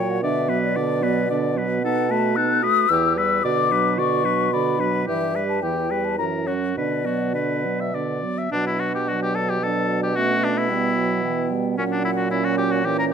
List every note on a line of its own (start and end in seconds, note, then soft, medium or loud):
0.00 0.24 A#2 medium
0.00 0.22 F#3 soft
0.00 0.22 F#4 soft
0.00 0.23 C#5 soft
0.00 0.12 G5 medium
0.10 0.22 F#5 medium
0.22 2.63 B2 medium
0.22 0.50 D3 soft
0.22 0.51 D4 soft
0.22 0.50 D5 soft
0.22 0.62 E5 medium
0.49 0.79 F#3 medium
0.49 0.78 B3 soft
0.49 0.77 B4 soft
0.63 1.55 D5 medium
0.76 1.05 D3 soft
0.76 1.05 D4 soft
0.76 1.04 D5 soft
1.03 1.30 F#3 soft
1.03 1.29 B3 soft
1.03 1.29 B4 soft
1.30 1.58 D3 soft
1.30 1.58 D4 soft
1.30 1.59 D5 soft
1.56 1.83 F#3 soft
1.56 1.83 B3 soft
1.56 1.84 B4 soft
1.83 2.12 B3 soft
1.83 2.11 D#4 medium
1.83 2.12 A4 medium
1.83 2.11 F#5 medium
2.09 2.38 A3 soft
2.09 2.38 F#4 soft
2.09 2.38 B4 soft
2.09 2.37 A5 medium
2.36 2.65 B3 soft
2.36 2.64 D#4 soft
2.36 2.65 A4 soft
2.36 2.64 F#6 medium
2.63 2.89 A3 soft
2.63 2.89 F#4 soft
2.63 2.90 B4 soft
2.63 2.91 D#6 medium
2.89 3.41 E2 medium
2.89 3.18 E3 soft
2.89 3.18 E4 soft
2.89 3.19 G4 soft
2.89 3.17 E6 medium
3.16 3.44 G3 soft
3.16 3.44 G4 soft
3.16 3.44 B4 soft
3.16 3.45 E6 medium
3.44 5.04 B2 medium
3.44 3.73 D3 soft
3.44 3.72 F#4 soft
3.44 3.73 D5 medium
3.44 3.98 D6 medium
3.71 4.00 F#3 soft
3.71 3.99 D4 soft
3.71 4.00 B4 soft
3.98 4.27 D3 soft
3.98 4.25 F#4 soft
3.98 4.27 D5 soft
3.98 4.55 C#6 medium
4.24 4.52 F#3 soft
4.24 4.51 D4 soft
4.24 4.52 B4 soft
4.52 4.82 D3 soft
4.52 4.80 F#4 soft
4.52 4.82 D5 soft
4.52 5.07 B5 medium
4.78 5.08 F#3 soft
4.78 5.06 D4 soft
4.78 5.06 B4 soft
5.06 5.64 G2 soft
5.06 5.37 E3 soft
5.06 5.35 E4 soft
5.06 5.37 G4 soft
5.06 5.48 E5 medium
5.33 5.63 G3 soft
5.33 5.62 G4 soft
5.33 5.61 B4 soft
5.49 5.64 A5 soft
5.62 6.20 E2 medium
5.62 5.93 E3 soft
5.62 5.91 E4 soft
5.62 5.92 G4 soft
5.62 6.06 G5 soft
5.90 6.19 G3 soft
5.90 6.17 G4 soft
5.90 6.17 B4 soft
6.05 6.18 A5 medium
6.18 6.77 F#2 soft
6.18 6.49 E3 soft
6.18 6.48 E4 soft
6.18 6.49 A#4 soft
6.18 6.25 A#5 medium
6.46 6.76 F#3 soft
6.46 6.75 C#4 soft
6.46 6.76 F#4 soft
6.46 6.53 C#5 soft
6.76 8.21 B2 soft
6.76 7.08 D3 soft
6.76 7.06 D4 soft
6.76 7.07 B4 soft
6.76 7.92 D5 medium
7.05 7.37 F#3 soft
7.05 7.36 B3 soft
7.05 7.34 F#4 soft
7.34 7.67 D3 soft
7.34 7.66 D4 soft
7.34 7.82 B4 soft
7.65 7.94 F#3 soft
7.65 7.94 B3 soft
7.80 7.96 E5 soft
7.94 8.25 D3 soft
7.94 8.24 D4 soft
7.94 8.40 D5 soft
8.23 8.51 F#3 soft
8.23 8.51 B3 soft
8.38 8.51 E5 soft
8.51 11.74 B2 soft
8.51 8.93 F#3 soft
8.51 9.45 D4 soft
8.51 8.65 D4 medium
8.51 9.09 F#5 soft
8.66 8.81 E4 medium
8.79 8.94 F#4 medium
8.94 9.10 G4 soft
9.07 9.62 F#3 soft
9.07 9.22 F#4 medium
9.07 9.62 D5 soft
9.22 9.36 G4 medium
9.35 9.51 A4 medium
9.49 9.65 G4 medium
9.62 10.16 F#3 soft
9.62 10.18 D4 soft
9.62 10.02 A4 medium
9.62 10.18 D5 soft
10.03 10.17 G4 medium
10.16 10.72 A3 soft
10.16 10.69 C#4 soft
10.16 10.45 F#4 medium
10.16 10.71 E5 soft
10.44 10.59 D4 medium
10.58 11.51 E4 medium
10.70 10.98 G3 soft
10.70 11.79 B3 soft
10.70 11.22 G5 soft
10.96 11.23 F#3 soft
11.23 11.52 E3 medium
11.23 11.76 G5 soft
11.51 11.79 G3 soft
11.77 13.13 A#2 medium
11.77 12.86 F#3 soft
11.77 12.31 C#4 soft
11.77 11.84 C#4 medium
11.77 12.33 F#5 soft
11.91 12.04 D4 medium
12.05 12.10 E4 medium
12.16 12.30 F#4 soft
12.31 12.84 C#4 soft
12.31 12.46 E4 medium
12.31 13.13 C#5 soft
12.44 12.57 F#4 medium
12.57 12.73 G4 medium
12.72 12.87 F#4 medium
12.84 13.13 E3 medium
12.84 13.13 C#4 soft
12.84 12.98 G4 medium
12.99 13.04 A#4 medium